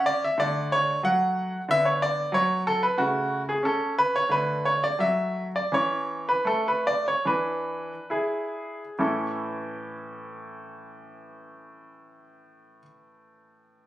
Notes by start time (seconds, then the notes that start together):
Already playing: C#4
0.06 D5
0.24 E5
0.38 D3 A3 D5
0.72 C#5
1.03 F#3 F#5
1.68 D3 B3 E5
1.85 C#5
2.02 D5
2.32 F#3 C#5
2.67 A4
2.83 B4
2.97 C#3 A3 F#4
3.49 G#4
3.63 C#4 A4
3.98 B4
4.16 C#5
4.29 D3 A3 B4
4.65 C#5
4.84 D5
4.99 F#3 E5
5.56 D5
5.72 E3 C#4 C#5
6.29 B4
6.45 A3 A4
6.68 B4
6.87 D5
7.08 C#5
7.25 E3 D4 B4
8.10 E4 G#4
8.98 A2 E3 C#4 E4 A4